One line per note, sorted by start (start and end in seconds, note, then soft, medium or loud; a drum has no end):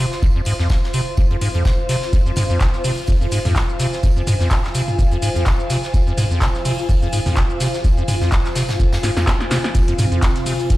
0.00 10.77 F4 medium
0.00 10.77 C5 medium
0.00 10.77 F5 medium
0.00 2.63 C6 medium
0.12 snare medium
0.22 0.27 F2 medium
0.22 kick loud
0.22 tambourine medium
0.36 0.41 F2 medium
0.45 0.54 G#2 medium
0.45 open hi-hat loud
0.45 tambourine medium
0.59 0.68 F2 medium
0.59 snare soft
0.70 0.77 F1 medium
0.70 kick loud
0.70 snare loud
0.70 tambourine medium
0.84 snare soft
0.93 1.01 C3 medium
0.93 open hi-hat loud
0.93 tambourine medium
1.17 1.22 F2 medium
1.17 kick loud
1.17 tambourine medium
1.31 1.37 F2 medium
1.31 closed hi-hat soft
1.41 1.49 G#2 medium
1.41 open hi-hat loud
1.41 tambourine medium
1.54 1.63 F2 medium
1.54 closed hi-hat soft
1.65 1.73 F1 medium
1.65 kick loud
1.65 snare loud
1.65 tambourine medium
1.89 1.96 C3 medium
1.89 snare medium
1.89 open hi-hat loud
1.89 tambourine medium
2.02 snare soft
2.13 2.17 F2 medium
2.13 kick loud
2.13 tambourine medium
2.13 shaker soft
2.26 2.32 F2 medium
2.26 shaker soft
2.36 2.44 G#2 medium
2.36 snare soft
2.36 mid tom medium
2.36 open hi-hat loud
2.36 tambourine medium
2.36 shaker medium
2.50 2.59 F2 medium
2.50 shaker soft
2.60 2.68 F1 medium
2.60 10.25 G#5 medium
2.60 kick loud
2.60 snare loud
2.60 clap loud
2.60 tambourine medium
2.60 shaker soft
2.73 snare soft
2.73 shaker soft
2.84 2.92 C3 medium
2.84 open hi-hat loud
2.84 open hi-hat medium
2.84 shaker medium
2.98 shaker soft
3.07 3.12 F2 medium
3.07 kick loud
3.07 tambourine medium
3.07 shaker soft
3.21 3.27 F2 medium
3.21 shaker soft
3.31 3.39 G#2 medium
3.31 open hi-hat loud
3.31 tambourine medium
3.31 shaker medium
3.45 3.54 F2 medium
3.45 snare soft
3.45 mid tom medium
3.45 open hi-hat medium
3.45 shaker soft
3.56 3.63 F1 medium
3.56 kick loud
3.56 snare loud
3.56 clap loud
3.56 tambourine medium
3.56 shaker soft
3.69 shaker soft
3.79 3.87 C3 medium
3.79 snare soft
3.79 open hi-hat loud
3.79 tambourine medium
3.79 shaker medium
3.93 snare soft
3.93 shaker soft
4.03 4.08 F2 medium
4.03 kick loud
4.03 tambourine medium
4.03 shaker soft
4.17 4.22 F2 medium
4.17 shaker soft
4.27 4.34 G#2 medium
4.27 mid tom medium
4.27 open hi-hat medium
4.27 tambourine medium
4.27 shaker medium
4.40 4.49 F2 medium
4.40 snare soft
4.40 shaker soft
4.51 4.58 F1 medium
4.51 kick loud
4.51 snare loud
4.51 clap loud
4.51 tambourine medium
4.51 shaker soft
4.64 snare soft
4.64 clap soft
4.64 shaker soft
4.74 4.82 C3 medium
4.74 open hi-hat medium
4.74 tambourine medium
4.74 shaker medium
4.88 mid tom medium
4.88 shaker soft
4.98 5.03 F2 medium
4.98 kick loud
4.98 tambourine medium
4.98 shaker soft
5.11 5.18 F2 medium
5.11 closed hi-hat soft
5.11 shaker soft
5.22 5.30 G#2 medium
5.22 open hi-hat loud
5.22 tambourine medium
5.22 shaker medium
5.36 5.44 F2 medium
5.36 closed hi-hat soft
5.36 shaker soft
5.46 5.53 F1 medium
5.46 kick loud
5.46 snare loud
5.46 clap loud
5.46 tambourine medium
5.46 shaker soft
5.60 shaker soft
5.70 5.77 C3 medium
5.70 snare medium
5.70 open hi-hat loud
5.70 tambourine medium
5.70 shaker medium
5.83 snare soft
5.83 shaker soft
5.94 5.98 F2 medium
5.94 kick loud
5.94 tambourine medium
5.94 shaker soft
6.07 6.13 F2 medium
6.07 shaker soft
6.18 6.25 G#2 medium
6.18 snare soft
6.18 mid tom medium
6.18 open hi-hat medium
6.18 tambourine medium
6.18 shaker medium
6.31 6.40 F2 medium
6.31 shaker soft
6.41 6.49 F1 medium
6.41 kick loud
6.41 snare loud
6.41 clap loud
6.41 tambourine medium
6.41 shaker soft
6.55 snare soft
6.55 shaker soft
6.65 6.73 C3 medium
6.65 open hi-hat medium
6.65 shaker medium
6.79 shaker soft
6.89 6.93 F2 medium
6.89 kick loud
6.89 tambourine medium
6.89 shaker soft
7.02 7.08 F2 medium
7.02 shaker soft
7.13 7.20 G#2 medium
7.13 open hi-hat medium
7.13 tambourine medium
7.13 shaker medium
7.26 7.35 F2 medium
7.26 snare soft
7.26 mid tom medium
7.26 open hi-hat medium
7.26 shaker soft
7.36 7.44 F1 medium
7.36 kick medium
7.36 snare loud
7.36 clap loud
7.36 tambourine medium
7.36 shaker soft
7.50 shaker soft
7.60 7.68 C3 medium
7.60 snare soft
7.60 open hi-hat loud
7.60 tambourine medium
7.60 shaker medium
7.73 snare medium
7.73 shaker soft
7.84 7.89 F2 medium
7.84 kick loud
7.84 tambourine medium
7.84 shaker soft
7.98 8.03 F2 medium
7.98 shaker soft
8.08 8.15 G#2 medium
8.08 mid tom medium
8.08 open hi-hat loud
8.08 tambourine medium
8.08 shaker medium
8.21 8.30 F2 medium
8.21 snare soft
8.21 shaker soft
8.32 8.39 F1 medium
8.32 kick loud
8.32 snare loud
8.32 clap loud
8.32 tambourine medium
8.32 shaker soft
8.45 snare soft
8.45 clap soft
8.45 shaker soft
8.55 8.63 C3 medium
8.55 snare loud
8.55 open hi-hat loud
8.55 tambourine medium
8.55 shaker medium
8.68 snare loud
8.68 mid tom medium
8.68 tambourine medium
8.68 shaker soft
8.79 8.84 F2 medium
8.79 kick loud
8.79 tambourine medium
8.79 shaker soft
8.93 8.99 F2 medium
8.93 snare loud
8.93 tambourine medium
8.93 shaker soft
9.03 9.11 G#2 medium
9.03 snare medium
9.03 snare soft
9.03 open hi-hat loud
9.03 shaker medium
9.17 9.25 F2 medium
9.17 snare medium
9.17 tambourine medium
9.17 shaker soft
9.27 9.34 F1 medium
9.27 kick medium
9.27 snare medium
9.27 snare loud
9.27 clap loud
9.27 tambourine medium
9.27 shaker soft
9.40 snare medium
9.40 shaker soft
9.51 9.58 C3 medium
9.51 snare medium
9.51 snare loud
9.51 open hi-hat loud
9.51 tambourine medium
9.51 shaker medium
9.64 snare medium
9.64 shaker soft
9.75 9.79 F2 medium
9.75 10.77 C3 medium
9.75 10.77 C4 medium
9.75 10.77 F4 medium
9.75 10.77 F5 medium
9.75 kick loud
9.75 closed hi-hat medium
9.75 tambourine medium
9.75 shaker soft
9.88 9.94 F2 medium
9.88 closed hi-hat medium
9.88 shaker soft
9.99 10.06 G#2 medium
9.99 snare soft
9.99 mid tom medium
9.99 open hi-hat loud
9.99 tambourine medium
9.99 shaker medium
10.12 10.21 F2 medium
10.12 closed hi-hat soft
10.12 shaker soft
10.22 10.30 F1 medium
10.22 10.77 C6 medium
10.22 kick loud
10.22 snare loud
10.22 clap loud
10.22 closed hi-hat medium
10.22 tambourine medium
10.22 shaker soft
10.36 snare soft
10.36 closed hi-hat medium
10.36 shaker soft
10.46 10.53 C3 medium
10.46 open hi-hat medium
10.46 open hi-hat loud
10.46 shaker medium
10.60 closed hi-hat soft
10.60 shaker soft
10.70 10.74 F2 medium
10.70 kick loud
10.70 closed hi-hat medium
10.70 tambourine medium
10.70 shaker soft